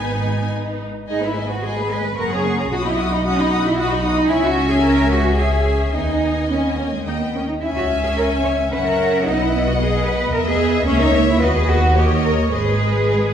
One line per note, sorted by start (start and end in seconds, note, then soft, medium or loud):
0.00 0.89 G#1 medium
0.00 0.89 G#2 soft
0.00 0.89 B3 soft
0.00 0.86 D#4 soft
0.00 0.82 B4 soft
0.00 0.52 G#5 medium
1.08 2.15 G#1 medium
1.08 1.23 G#3 soft
1.08 1.22 D#4 medium
1.08 1.22 D#5 soft
1.08 1.23 G#5 soft
1.23 1.37 B3 soft
1.23 1.51 E4 medium
1.23 1.37 B4 soft
1.23 1.37 B5 soft
1.37 1.51 G#3 soft
1.37 1.51 D#5 soft
1.37 1.51 G#5 soft
1.50 1.64 B3 soft
1.50 1.64 F#4 medium
1.50 1.64 B4 soft
1.50 1.64 B5 soft
1.63 1.76 G#3 soft
1.63 1.92 G#4 medium
1.63 1.77 D#5 soft
1.63 1.77 G#5 soft
1.77 1.91 B3 soft
1.77 1.92 B4 soft
1.77 1.92 B5 soft
1.91 2.05 G#3 soft
1.91 2.19 B4 medium
1.91 2.05 D#5 soft
1.91 2.05 G#5 soft
2.04 2.19 B3 soft
2.04 2.19 B4 soft
2.04 2.19 B5 soft
2.18 2.73 F#1 medium
2.18 2.31 A#3 soft
2.18 2.32 A#4 medium
2.18 2.32 F#5 soft
2.18 2.31 C#6 soft
2.31 2.46 C#4 soft
2.31 2.58 G#4 medium
2.31 2.47 C#5 soft
2.31 2.46 A#5 soft
2.44 2.59 A#3 soft
2.44 2.60 F#5 soft
2.44 2.59 C#6 soft
2.59 2.73 C#4 soft
2.59 2.64 G#4 medium
2.59 2.73 C#5 soft
2.59 2.73 A#5 soft
2.72 4.28 B1 medium
2.72 2.78 F#4 medium
2.72 2.85 F#4 medium
2.72 2.85 F#5 soft
2.72 2.85 D#6 medium
2.86 2.99 D#4 medium
2.86 3.12 E4 medium
2.86 3.00 D#5 soft
2.86 2.99 B5 soft
2.98 3.12 F#4 soft
2.98 3.13 F#5 soft
2.98 3.13 D#6 medium
3.12 3.26 D#4 medium
3.12 3.27 D#5 soft
3.12 3.26 B5 soft
3.25 3.39 C#4 medium
3.25 3.38 F#4 soft
3.25 3.39 F#5 medium
3.25 3.38 D#6 medium
3.39 3.52 D#4 medium
3.39 3.65 D#4 medium
3.39 3.53 D#5 medium
3.39 3.53 B5 medium
3.52 3.66 F#4 medium
3.52 3.66 F#5 soft
3.52 3.65 D#6 medium
3.65 3.78 D#4 medium
3.65 3.78 E4 medium
3.65 3.79 D#5 medium
3.65 3.79 B5 medium
3.78 3.90 F#4 medium
3.78 4.04 F#4 medium
3.78 3.91 F#5 medium
3.78 3.91 D#6 medium
3.90 4.04 D#4 medium
3.90 4.05 D#5 medium
3.90 4.05 B5 soft
4.04 4.30 D#4 medium
4.04 4.17 F#4 soft
4.04 4.18 F#5 soft
4.04 4.18 D#6 medium
4.17 4.31 D#4 soft
4.17 4.31 D#5 soft
4.17 4.31 B5 medium
4.30 5.91 C#2 medium
4.30 5.34 C#4 medium
4.30 4.44 E4 loud
4.30 5.34 E5 medium
4.30 5.35 G#5 medium
4.44 4.71 F#4 medium
4.70 4.84 G#4 medium
4.83 5.10 A#4 medium
5.11 5.38 F#4 medium
5.38 5.93 C#4 soft
5.38 5.94 G#4 medium
5.38 5.93 E5 soft
5.38 5.94 G#5 soft
5.94 7.04 D#2 medium
5.94 6.45 B3 soft
5.94 6.49 D#4 medium
5.94 7.05 D#5 soft
5.94 7.05 G#5 soft
6.50 6.59 B3 soft
6.50 6.64 C#4 medium
6.64 6.78 B3 medium
6.77 6.92 A#3 medium
6.77 6.86 C#4 medium
6.92 7.06 G#3 medium
7.06 7.42 D#2 soft
7.06 7.20 A#3 medium
7.06 7.15 D#4 medium
7.06 7.41 D#5 soft
7.06 7.42 G5 soft
7.20 7.35 B3 medium
7.34 7.43 A#3 soft
7.34 7.49 C#4 medium
7.48 7.54 D#4 medium
7.61 8.68 C#2 medium
7.61 8.69 C#4 medium
7.61 7.67 E4 medium
7.61 8.68 E5 medium
7.61 8.69 G#5 medium
7.76 7.84 F#4 medium
8.04 8.09 G#4 medium
8.17 8.25 A#4 medium
8.45 8.53 C#5 medium
8.71 9.26 F#1 medium
8.71 9.26 C#4 medium
8.71 8.77 B4 medium
8.71 9.25 E5 soft
8.71 9.25 F#5 medium
8.85 9.25 A#4 medium
9.26 10.33 B1 medium
9.26 10.32 B3 medium
9.26 9.39 D#4 medium
9.26 10.33 D#5 medium
9.26 10.31 F#5 medium
9.39 9.66 E4 medium
9.66 9.71 F#4 medium
9.79 10.05 G#4 medium
10.06 10.33 B4 medium
10.33 10.86 E2 medium
10.33 10.85 B3 medium
10.33 10.38 A#4 medium
10.33 10.86 D#5 medium
10.33 10.85 E5 medium
10.46 10.85 G#4 medium
10.86 11.39 C#2 medium
10.86 11.40 A#3 medium
10.86 10.99 C#4 loud
10.86 11.39 C#5 medium
10.86 11.39 E5 medium
11.00 11.27 D#4 medium
11.27 11.40 E4 medium
11.39 12.52 D#2 medium
11.39 11.95 B3 medium
11.39 11.54 F#4 medium
11.39 11.95 B4 medium
11.39 11.95 D#5 medium
11.55 11.68 G#4 medium
11.68 11.96 F#4 loud
11.95 12.50 A#3 medium
11.95 12.24 G4 medium
11.95 12.52 C#5 medium
11.95 12.51 D#5 medium
12.24 12.32 A#4 medium
12.52 13.34 G#1 medium
12.52 13.34 G#3 medium
12.52 13.34 G#4 medium
12.52 13.34 B4 medium
12.52 13.03 D#5 medium
13.10 13.18 D#5 soft